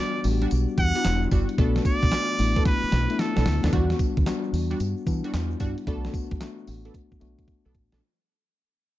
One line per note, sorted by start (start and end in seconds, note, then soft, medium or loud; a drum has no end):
0.00 0.10 G3 medium
0.00 0.11 B3 medium
0.00 0.11 D4 medium
0.00 0.11 F#4 loud
0.00 0.25 D5 loud
0.15 shaker medium
0.24 0.45 A1 medium
0.24 0.77 G3 medium
0.24 0.78 B3 medium
0.24 0.78 D4 medium
0.24 0.33 F#4 medium
0.24 open hi-hat medium
0.24 tambourine medium
0.32 0.81 G4 medium
0.41 0.50 G3 medium
0.41 0.50 D4 medium
0.41 0.50 F#4 medium
0.41 closed hi-hat medium
0.41 shaker medium
0.51 0.65 B1 loud
0.51 closed hi-hat medium
0.51 tambourine medium
0.51 shaker medium
0.68 shaker medium
0.78 0.91 E2 loud
0.78 1.28 F#5 loud
0.78 kick loud
0.78 closed hi-hat medium
0.78 tambourine medium
0.95 1.04 G3 medium
0.95 1.48 G3 medium
0.95 1.48 B3 medium
0.95 1.04 D4 medium
0.95 1.48 D4 medium
0.95 1.49 E4 medium
0.95 1.04 F#4 medium
0.95 closed hi-hat medium
1.05 1.26 E1 loud
1.05 snare loud
1.05 clap medium
1.05 closed hi-hat medium
1.05 tambourine loud
1.22 shaker medium
1.31 1.45 G1 medium
1.31 1.48 G3 medium
1.31 1.48 D4 medium
1.31 1.48 F#4 medium
1.31 kick loud
1.31 closed hi-hat medium
1.31 tambourine medium
1.31 shaker medium
1.49 closed hi-hat medium
1.49 shaker soft
1.58 1.79 B1 loud
1.58 2.25 A3 medium
1.58 1.84 B3 loud
1.58 2.25 B3 medium
1.58 1.84 D4 medium
1.58 2.25 D4 medium
1.58 2.25 F#4 loud
1.58 1.84 A4 loud
1.58 kick loud
1.58 closed hi-hat medium
1.58 shaker medium
1.76 snare medium
1.76 shaker medium
1.85 2.62 D5 loud
1.85 kick loud
1.85 closed hi-hat medium
1.85 tambourine medium
2.03 2.10 B1 medium
2.03 kick medium
2.03 closed hi-hat medium
2.12 snare loud
2.12 clap medium
2.12 closed hi-hat medium
2.12 tambourine medium
2.39 2.60 A1 medium
2.39 2.92 A3 medium
2.39 2.92 B3 medium
2.39 2.92 D4 medium
2.39 2.92 E4 medium
2.39 open hi-hat medium
2.39 tambourine medium
2.56 2.65 B3 medium
2.56 2.65 D4 medium
2.56 2.65 A4 medium
2.56 kick medium
2.56 closed hi-hat medium
2.56 shaker medium
2.65 3.22 B4 loud
2.65 kick loud
2.65 snare medium
2.65 closed hi-hat medium
2.65 shaker medium
2.83 muted fingered electric bass stroke soft
2.83 shaker medium
2.92 3.06 B1 loud
2.92 snare medium
2.92 closed hi-hat medium
2.92 shaker soft
3.10 3.63 A3 medium
3.10 3.63 B3 medium
3.10 3.63 D4 medium
3.10 3.63 E4 medium
3.10 closed hi-hat medium
3.10 shaker medium
3.19 3.64 A4 medium
3.19 snare medium
3.19 closed hi-hat medium
3.19 shaker medium
3.36 3.44 B1 loud
3.36 3.45 B3 medium
3.36 3.45 D4 medium
3.36 3.45 A4 medium
3.36 snare medium
3.36 shaker medium
3.46 3.60 D2 loud
3.46 snare loud
3.46 open hi-hat medium
3.63 3.71 D#2 loud
3.63 3.72 B3 medium
3.63 3.72 D4 medium
3.63 3.72 A4 medium
3.63 snare loud
3.63 closed hi-hat medium
3.63 shaker soft
3.72 3.93 E2 loud
3.72 3.98 G3 loud
3.72 4.19 G3 medium
3.72 4.19 B3 medium
3.72 3.98 D4 medium
3.72 4.19 D4 medium
3.72 3.82 E4 medium
3.72 3.98 F#4 loud
3.72 kick loud
3.72 closed hi-hat medium
3.72 shaker medium
3.80 4.22 F#4 loud
3.90 snare medium
3.90 shaker medium
3.99 kick medium
3.99 closed hi-hat medium
3.99 tambourine medium
3.99 shaker medium
4.17 4.24 D2 medium
4.17 kick loud
4.17 closed hi-hat medium
4.17 shaker medium
4.26 4.92 G3 medium
4.26 4.93 B3 medium
4.26 4.93 D4 medium
4.26 4.93 F#4 loud
4.26 snare loud
4.26 clap medium
4.26 closed hi-hat medium
4.26 tambourine medium
4.26 shaker medium
4.43 shaker medium
4.53 4.73 E2 medium
4.53 open hi-hat medium
4.53 tambourine medium
4.70 4.79 G3 medium
4.70 4.79 D4 medium
4.70 4.79 F#4 medium
4.70 closed hi-hat medium
4.70 shaker soft
4.79 4.93 G2 loud
4.79 closed hi-hat medium
4.79 tambourine medium
4.79 shaker medium
4.97 shaker medium
5.06 5.20 E3 loud
5.06 5.73 G3 medium
5.06 5.73 B3 medium
5.06 5.73 D4 medium
5.06 5.74 E4 medium
5.06 kick loud
5.06 closed hi-hat medium
5.06 tambourine medium
5.24 5.32 G3 medium
5.24 5.33 D4 medium
5.24 5.33 F#4 medium
5.24 closed hi-hat medium
5.24 shaker medium
5.34 5.54 E2 medium
5.34 snare loud
5.34 clap medium
5.34 closed hi-hat medium
5.34 tambourine loud
5.51 shaker medium
5.60 5.74 G2 loud
5.60 5.76 G3 medium
5.60 5.76 D4 medium
5.60 5.76 F#4 medium
5.60 kick medium
5.60 closed hi-hat medium
5.60 tambourine medium
5.60 shaker medium
5.77 closed hi-hat medium
5.77 shaker soft
5.87 6.08 B1 loud
5.87 6.33 A3 medium
5.87 6.12 B3 medium
5.87 6.33 B3 medium
5.87 6.13 D4 medium
5.87 6.33 D4 medium
5.87 6.33 F#4 loud
5.87 6.13 A4 loud
5.87 kick loud
5.87 closed hi-hat medium
5.87 shaker medium
6.05 snare medium
6.05 shaker medium
6.14 kick medium
6.14 closed hi-hat medium
6.14 tambourine medium
6.14 shaker medium
6.31 6.39 B1 medium
6.31 kick medium
6.31 closed hi-hat medium
6.31 shaker medium
6.41 7.07 A3 medium
6.41 7.07 B3 medium
6.41 7.07 D4 medium
6.41 7.07 F#4 loud
6.41 snare loud
6.41 clap medium
6.41 closed hi-hat medium
6.41 tambourine medium
6.41 shaker medium
6.58 shaker medium
6.67 6.88 A1 medium
6.67 open hi-hat medium
6.67 tambourine medium
6.85 6.93 B3 medium
6.85 6.93 D4 medium
6.85 6.94 A4 medium
6.85 closed hi-hat medium
6.85 shaker soft
6.94 kick medium
6.94 closed hi-hat medium
6.94 shaker medium
7.11 muted fingered electric bass stroke soft
7.11 kick medium
7.11 shaker medium
7.20 7.35 B1 medium
7.20 7.87 A3 medium
7.20 7.87 B3 medium
7.20 7.87 D4 medium
7.20 7.88 F#4 loud
7.20 closed hi-hat medium
7.20 shaker soft
7.38 kick medium
7.38 closed hi-hat medium
7.38 shaker medium
7.48 kick medium
7.48 closed hi-hat medium
7.48 shaker medium
7.65 7.73 B1 medium
7.65 7.74 B3 medium
7.65 7.74 D4 medium
7.65 7.74 A4 medium
7.75 7.88 A1 loud
7.75 kick loud
7.75 closed hi-hat medium
7.92 8.00 A#1 medium
7.92 8.01 B3 medium
7.92 8.01 D4 medium
7.92 8.01 A4 medium
7.92 snare loud
7.92 closed hi-hat medium